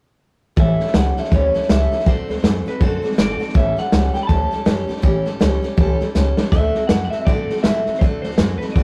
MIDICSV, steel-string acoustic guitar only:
0, 0, Header, 1, 2, 480
1, 0, Start_track
1, 0, Tempo, 372208
1, 735, Time_signature, 4, 2, 24, 8
1, 11387, End_track
2, 0, Start_track
2, 0, Title_t, "Steel-string acoustic guitar"
2, 0, Program_c, 0, 25
2, 725, Note_on_c, 0, 45, 79
2, 736, Note_on_c, 0, 52, 80
2, 737, Note_on_c, 0, 55, 76
2, 739, Note_on_c, 0, 61, 83
2, 744, Note_on_c, 0, 64, 86
2, 745, Note_on_c, 0, 69, 77
2, 1019, Note_off_c, 0, 69, 0
2, 1023, Note_off_c, 0, 45, 0
2, 1029, Note_off_c, 0, 52, 0
2, 1029, Note_off_c, 0, 55, 0
2, 1030, Note_off_c, 0, 61, 0
2, 1033, Note_off_c, 0, 64, 0
2, 1034, Note_on_c, 0, 69, 49
2, 1048, Note_on_c, 0, 64, 47
2, 1057, Note_on_c, 0, 61, 46
2, 1061, Note_on_c, 0, 55, 42
2, 1204, Note_off_c, 0, 55, 0
2, 1212, Note_off_c, 0, 61, 0
2, 1218, Note_off_c, 0, 69, 0
2, 1219, Note_off_c, 0, 64, 0
2, 1219, Note_on_c, 0, 55, 69
2, 1228, Note_on_c, 0, 61, 67
2, 1235, Note_on_c, 0, 64, 71
2, 1242, Note_on_c, 0, 69, 71
2, 1495, Note_off_c, 0, 69, 0
2, 1503, Note_off_c, 0, 64, 0
2, 1510, Note_off_c, 0, 55, 0
2, 1511, Note_on_c, 0, 69, 62
2, 1515, Note_off_c, 0, 61, 0
2, 1518, Note_on_c, 0, 64, 54
2, 1528, Note_on_c, 0, 61, 57
2, 1529, Note_on_c, 0, 55, 57
2, 1691, Note_off_c, 0, 55, 0
2, 1696, Note_off_c, 0, 61, 0
2, 1697, Note_off_c, 0, 69, 0
2, 1700, Note_on_c, 0, 45, 81
2, 1701, Note_off_c, 0, 64, 0
2, 1702, Note_on_c, 0, 52, 83
2, 1706, Note_on_c, 0, 55, 80
2, 1712, Note_on_c, 0, 61, 85
2, 1713, Note_on_c, 0, 64, 82
2, 1715, Note_on_c, 0, 69, 80
2, 1973, Note_off_c, 0, 69, 0
2, 1979, Note_off_c, 0, 64, 0
2, 1988, Note_on_c, 0, 69, 58
2, 1989, Note_off_c, 0, 61, 0
2, 1991, Note_off_c, 0, 45, 0
2, 1992, Note_off_c, 0, 52, 0
2, 1994, Note_off_c, 0, 55, 0
2, 1995, Note_on_c, 0, 64, 55
2, 2005, Note_on_c, 0, 61, 52
2, 2010, Note_on_c, 0, 55, 47
2, 2161, Note_off_c, 0, 55, 0
2, 2173, Note_off_c, 0, 61, 0
2, 2176, Note_off_c, 0, 69, 0
2, 2176, Note_on_c, 0, 55, 73
2, 2179, Note_off_c, 0, 64, 0
2, 2189, Note_on_c, 0, 61, 61
2, 2194, Note_on_c, 0, 64, 69
2, 2203, Note_on_c, 0, 69, 82
2, 2455, Note_off_c, 0, 69, 0
2, 2466, Note_off_c, 0, 64, 0
2, 2469, Note_off_c, 0, 55, 0
2, 2470, Note_on_c, 0, 69, 51
2, 2475, Note_off_c, 0, 61, 0
2, 2482, Note_on_c, 0, 64, 51
2, 2490, Note_on_c, 0, 61, 49
2, 2498, Note_on_c, 0, 55, 48
2, 2655, Note_off_c, 0, 55, 0
2, 2656, Note_off_c, 0, 61, 0
2, 2656, Note_on_c, 0, 50, 75
2, 2657, Note_off_c, 0, 69, 0
2, 2660, Note_on_c, 0, 57, 82
2, 2661, Note_on_c, 0, 60, 79
2, 2663, Note_off_c, 0, 64, 0
2, 2669, Note_on_c, 0, 66, 79
2, 2673, Note_on_c, 0, 69, 84
2, 2927, Note_off_c, 0, 69, 0
2, 2943, Note_on_c, 0, 69, 50
2, 2944, Note_off_c, 0, 66, 0
2, 2949, Note_off_c, 0, 50, 0
2, 2951, Note_off_c, 0, 57, 0
2, 2952, Note_off_c, 0, 60, 0
2, 2960, Note_on_c, 0, 66, 47
2, 2970, Note_on_c, 0, 60, 40
2, 3125, Note_off_c, 0, 60, 0
2, 3128, Note_on_c, 0, 57, 65
2, 3133, Note_off_c, 0, 69, 0
2, 3134, Note_off_c, 0, 66, 0
2, 3141, Note_on_c, 0, 60, 69
2, 3149, Note_on_c, 0, 66, 73
2, 3151, Note_on_c, 0, 69, 70
2, 3411, Note_off_c, 0, 69, 0
2, 3424, Note_off_c, 0, 66, 0
2, 3425, Note_off_c, 0, 57, 0
2, 3426, Note_on_c, 0, 69, 65
2, 3432, Note_off_c, 0, 60, 0
2, 3439, Note_on_c, 0, 66, 58
2, 3456, Note_on_c, 0, 60, 49
2, 3610, Note_off_c, 0, 60, 0
2, 3613, Note_off_c, 0, 66, 0
2, 3615, Note_off_c, 0, 69, 0
2, 3615, Note_on_c, 0, 50, 69
2, 3617, Note_on_c, 0, 57, 85
2, 3626, Note_on_c, 0, 60, 75
2, 3629, Note_on_c, 0, 66, 86
2, 3639, Note_on_c, 0, 69, 88
2, 3880, Note_off_c, 0, 69, 0
2, 3890, Note_off_c, 0, 66, 0
2, 3895, Note_on_c, 0, 69, 57
2, 3899, Note_off_c, 0, 60, 0
2, 3906, Note_on_c, 0, 66, 53
2, 3909, Note_off_c, 0, 50, 0
2, 3910, Note_off_c, 0, 57, 0
2, 3914, Note_on_c, 0, 60, 53
2, 4082, Note_off_c, 0, 60, 0
2, 4084, Note_on_c, 0, 57, 70
2, 4086, Note_off_c, 0, 66, 0
2, 4089, Note_off_c, 0, 69, 0
2, 4098, Note_on_c, 0, 60, 70
2, 4102, Note_on_c, 0, 66, 69
2, 4113, Note_on_c, 0, 69, 74
2, 4362, Note_off_c, 0, 69, 0
2, 4371, Note_off_c, 0, 66, 0
2, 4378, Note_on_c, 0, 69, 56
2, 4383, Note_off_c, 0, 57, 0
2, 4383, Note_off_c, 0, 60, 0
2, 4387, Note_on_c, 0, 66, 50
2, 4398, Note_on_c, 0, 60, 45
2, 4565, Note_on_c, 0, 45, 77
2, 4567, Note_off_c, 0, 69, 0
2, 4568, Note_off_c, 0, 60, 0
2, 4570, Note_on_c, 0, 52, 90
2, 4573, Note_on_c, 0, 61, 80
2, 4575, Note_off_c, 0, 66, 0
2, 4576, Note_on_c, 0, 55, 88
2, 4581, Note_on_c, 0, 67, 82
2, 4583, Note_on_c, 0, 69, 92
2, 4839, Note_off_c, 0, 69, 0
2, 4851, Note_off_c, 0, 67, 0
2, 4854, Note_on_c, 0, 69, 50
2, 4858, Note_off_c, 0, 61, 0
2, 4864, Note_off_c, 0, 45, 0
2, 4866, Note_off_c, 0, 52, 0
2, 4866, Note_on_c, 0, 67, 52
2, 4869, Note_off_c, 0, 55, 0
2, 4874, Note_on_c, 0, 61, 46
2, 4884, Note_on_c, 0, 55, 41
2, 5033, Note_off_c, 0, 55, 0
2, 5042, Note_off_c, 0, 61, 0
2, 5044, Note_off_c, 0, 67, 0
2, 5049, Note_off_c, 0, 69, 0
2, 5049, Note_on_c, 0, 55, 60
2, 5057, Note_on_c, 0, 61, 68
2, 5060, Note_on_c, 0, 67, 70
2, 5070, Note_on_c, 0, 69, 64
2, 5325, Note_off_c, 0, 69, 0
2, 5336, Note_off_c, 0, 67, 0
2, 5340, Note_off_c, 0, 61, 0
2, 5340, Note_on_c, 0, 69, 58
2, 5346, Note_off_c, 0, 55, 0
2, 5352, Note_on_c, 0, 67, 67
2, 5356, Note_on_c, 0, 61, 53
2, 5365, Note_on_c, 0, 55, 49
2, 5521, Note_off_c, 0, 55, 0
2, 5526, Note_off_c, 0, 61, 0
2, 5528, Note_off_c, 0, 69, 0
2, 5530, Note_off_c, 0, 67, 0
2, 5532, Note_on_c, 0, 45, 84
2, 5534, Note_on_c, 0, 52, 74
2, 5537, Note_on_c, 0, 55, 71
2, 5542, Note_on_c, 0, 61, 77
2, 5543, Note_on_c, 0, 69, 88
2, 5546, Note_on_c, 0, 67, 87
2, 5799, Note_off_c, 0, 69, 0
2, 5809, Note_off_c, 0, 67, 0
2, 5815, Note_on_c, 0, 69, 57
2, 5817, Note_off_c, 0, 61, 0
2, 5821, Note_off_c, 0, 55, 0
2, 5825, Note_on_c, 0, 67, 60
2, 5828, Note_off_c, 0, 45, 0
2, 5828, Note_off_c, 0, 52, 0
2, 5832, Note_on_c, 0, 61, 51
2, 5836, Note_on_c, 0, 55, 51
2, 5986, Note_off_c, 0, 55, 0
2, 5996, Note_off_c, 0, 61, 0
2, 6001, Note_off_c, 0, 67, 0
2, 6001, Note_on_c, 0, 55, 79
2, 6006, Note_off_c, 0, 69, 0
2, 6011, Note_on_c, 0, 61, 67
2, 6017, Note_on_c, 0, 67, 73
2, 6022, Note_on_c, 0, 69, 78
2, 6272, Note_off_c, 0, 69, 0
2, 6287, Note_on_c, 0, 69, 61
2, 6289, Note_off_c, 0, 67, 0
2, 6292, Note_off_c, 0, 61, 0
2, 6299, Note_off_c, 0, 55, 0
2, 6304, Note_on_c, 0, 67, 63
2, 6308, Note_on_c, 0, 61, 54
2, 6315, Note_on_c, 0, 55, 50
2, 6470, Note_off_c, 0, 55, 0
2, 6470, Note_off_c, 0, 61, 0
2, 6473, Note_off_c, 0, 67, 0
2, 6473, Note_on_c, 0, 45, 92
2, 6478, Note_on_c, 0, 52, 89
2, 6479, Note_off_c, 0, 69, 0
2, 6485, Note_on_c, 0, 55, 90
2, 6486, Note_on_c, 0, 61, 94
2, 6489, Note_on_c, 0, 67, 92
2, 6494, Note_on_c, 0, 69, 93
2, 6762, Note_off_c, 0, 69, 0
2, 6774, Note_off_c, 0, 67, 0
2, 6778, Note_off_c, 0, 45, 0
2, 6778, Note_on_c, 0, 69, 65
2, 6781, Note_off_c, 0, 52, 0
2, 6784, Note_off_c, 0, 55, 0
2, 6784, Note_off_c, 0, 61, 0
2, 6789, Note_on_c, 0, 67, 49
2, 6797, Note_on_c, 0, 61, 53
2, 6805, Note_on_c, 0, 55, 44
2, 6944, Note_off_c, 0, 55, 0
2, 6954, Note_off_c, 0, 61, 0
2, 6959, Note_on_c, 0, 55, 72
2, 6960, Note_off_c, 0, 67, 0
2, 6968, Note_off_c, 0, 69, 0
2, 6970, Note_on_c, 0, 61, 67
2, 6975, Note_on_c, 0, 67, 79
2, 6983, Note_on_c, 0, 69, 86
2, 7237, Note_off_c, 0, 69, 0
2, 7251, Note_off_c, 0, 67, 0
2, 7252, Note_on_c, 0, 69, 65
2, 7260, Note_off_c, 0, 61, 0
2, 7261, Note_off_c, 0, 55, 0
2, 7266, Note_on_c, 0, 67, 62
2, 7276, Note_on_c, 0, 61, 61
2, 7278, Note_on_c, 0, 55, 59
2, 7432, Note_off_c, 0, 55, 0
2, 7439, Note_off_c, 0, 67, 0
2, 7440, Note_off_c, 0, 69, 0
2, 7441, Note_off_c, 0, 61, 0
2, 7442, Note_on_c, 0, 45, 91
2, 7445, Note_on_c, 0, 52, 77
2, 7448, Note_on_c, 0, 55, 84
2, 7455, Note_on_c, 0, 67, 101
2, 7455, Note_on_c, 0, 69, 94
2, 7456, Note_on_c, 0, 61, 83
2, 7729, Note_off_c, 0, 69, 0
2, 7735, Note_off_c, 0, 67, 0
2, 7743, Note_off_c, 0, 45, 0
2, 7745, Note_off_c, 0, 52, 0
2, 7745, Note_on_c, 0, 69, 63
2, 7746, Note_off_c, 0, 55, 0
2, 7750, Note_off_c, 0, 61, 0
2, 7750, Note_on_c, 0, 67, 62
2, 7765, Note_on_c, 0, 55, 51
2, 7765, Note_on_c, 0, 61, 54
2, 7916, Note_off_c, 0, 55, 0
2, 7923, Note_off_c, 0, 61, 0
2, 7928, Note_off_c, 0, 67, 0
2, 7931, Note_on_c, 0, 55, 81
2, 7935, Note_off_c, 0, 69, 0
2, 7938, Note_on_c, 0, 61, 78
2, 7943, Note_on_c, 0, 67, 82
2, 7949, Note_on_c, 0, 69, 75
2, 8203, Note_off_c, 0, 69, 0
2, 8212, Note_off_c, 0, 67, 0
2, 8217, Note_off_c, 0, 61, 0
2, 8218, Note_on_c, 0, 69, 65
2, 8228, Note_off_c, 0, 55, 0
2, 8228, Note_on_c, 0, 67, 58
2, 8232, Note_on_c, 0, 61, 58
2, 8241, Note_on_c, 0, 55, 47
2, 8412, Note_off_c, 0, 69, 0
2, 8414, Note_on_c, 0, 50, 79
2, 8415, Note_off_c, 0, 55, 0
2, 8417, Note_off_c, 0, 67, 0
2, 8418, Note_off_c, 0, 61, 0
2, 8420, Note_on_c, 0, 57, 88
2, 8423, Note_on_c, 0, 60, 76
2, 8430, Note_on_c, 0, 66, 80
2, 8437, Note_on_c, 0, 69, 84
2, 8696, Note_off_c, 0, 69, 0
2, 8708, Note_off_c, 0, 66, 0
2, 8709, Note_off_c, 0, 50, 0
2, 8711, Note_on_c, 0, 69, 51
2, 8712, Note_off_c, 0, 57, 0
2, 8714, Note_off_c, 0, 60, 0
2, 8723, Note_on_c, 0, 66, 52
2, 8732, Note_on_c, 0, 60, 45
2, 8891, Note_off_c, 0, 60, 0
2, 8898, Note_off_c, 0, 66, 0
2, 8898, Note_off_c, 0, 69, 0
2, 8899, Note_on_c, 0, 57, 71
2, 8907, Note_on_c, 0, 60, 69
2, 8913, Note_on_c, 0, 66, 65
2, 8921, Note_on_c, 0, 69, 66
2, 9174, Note_off_c, 0, 69, 0
2, 9189, Note_off_c, 0, 66, 0
2, 9189, Note_on_c, 0, 69, 58
2, 9192, Note_off_c, 0, 57, 0
2, 9196, Note_off_c, 0, 60, 0
2, 9205, Note_on_c, 0, 66, 53
2, 9213, Note_on_c, 0, 60, 49
2, 9365, Note_off_c, 0, 60, 0
2, 9373, Note_off_c, 0, 66, 0
2, 9377, Note_on_c, 0, 50, 72
2, 9378, Note_off_c, 0, 69, 0
2, 9380, Note_on_c, 0, 60, 85
2, 9382, Note_on_c, 0, 57, 70
2, 9389, Note_on_c, 0, 66, 86
2, 9392, Note_on_c, 0, 69, 77
2, 9664, Note_off_c, 0, 69, 0
2, 9671, Note_off_c, 0, 50, 0
2, 9672, Note_off_c, 0, 60, 0
2, 9673, Note_off_c, 0, 57, 0
2, 9677, Note_off_c, 0, 66, 0
2, 9680, Note_on_c, 0, 69, 61
2, 9694, Note_on_c, 0, 66, 50
2, 9705, Note_on_c, 0, 60, 51
2, 9852, Note_off_c, 0, 60, 0
2, 9859, Note_off_c, 0, 66, 0
2, 9861, Note_on_c, 0, 57, 60
2, 9863, Note_off_c, 0, 69, 0
2, 9867, Note_on_c, 0, 60, 67
2, 9874, Note_on_c, 0, 66, 69
2, 9884, Note_on_c, 0, 69, 77
2, 10133, Note_off_c, 0, 69, 0
2, 10144, Note_off_c, 0, 66, 0
2, 10148, Note_on_c, 0, 69, 55
2, 10153, Note_off_c, 0, 57, 0
2, 10156, Note_off_c, 0, 60, 0
2, 10160, Note_on_c, 0, 66, 52
2, 10176, Note_on_c, 0, 60, 41
2, 10331, Note_off_c, 0, 60, 0
2, 10331, Note_off_c, 0, 66, 0
2, 10333, Note_on_c, 0, 50, 73
2, 10337, Note_off_c, 0, 69, 0
2, 10339, Note_on_c, 0, 57, 75
2, 10347, Note_on_c, 0, 60, 87
2, 10347, Note_on_c, 0, 66, 79
2, 10353, Note_on_c, 0, 69, 83
2, 10616, Note_off_c, 0, 69, 0
2, 10629, Note_off_c, 0, 50, 0
2, 10631, Note_off_c, 0, 57, 0
2, 10632, Note_on_c, 0, 69, 58
2, 10635, Note_off_c, 0, 60, 0
2, 10635, Note_off_c, 0, 66, 0
2, 10652, Note_on_c, 0, 66, 45
2, 10663, Note_on_c, 0, 60, 43
2, 10805, Note_off_c, 0, 60, 0
2, 10809, Note_off_c, 0, 66, 0
2, 10810, Note_on_c, 0, 57, 67
2, 10818, Note_off_c, 0, 69, 0
2, 10820, Note_on_c, 0, 60, 65
2, 10824, Note_on_c, 0, 66, 72
2, 10838, Note_on_c, 0, 69, 73
2, 11090, Note_off_c, 0, 69, 0
2, 11105, Note_on_c, 0, 69, 60
2, 11106, Note_off_c, 0, 66, 0
2, 11107, Note_off_c, 0, 57, 0
2, 11112, Note_off_c, 0, 60, 0
2, 11122, Note_on_c, 0, 66, 55
2, 11129, Note_on_c, 0, 60, 50
2, 11285, Note_off_c, 0, 60, 0
2, 11289, Note_on_c, 0, 50, 75
2, 11290, Note_off_c, 0, 66, 0
2, 11295, Note_off_c, 0, 69, 0
2, 11295, Note_on_c, 0, 57, 82
2, 11300, Note_on_c, 0, 60, 87
2, 11306, Note_on_c, 0, 66, 79
2, 11309, Note_on_c, 0, 69, 77
2, 11387, Note_off_c, 0, 50, 0
2, 11387, Note_off_c, 0, 57, 0
2, 11387, Note_off_c, 0, 60, 0
2, 11387, Note_off_c, 0, 66, 0
2, 11387, Note_off_c, 0, 69, 0
2, 11387, End_track
0, 0, End_of_file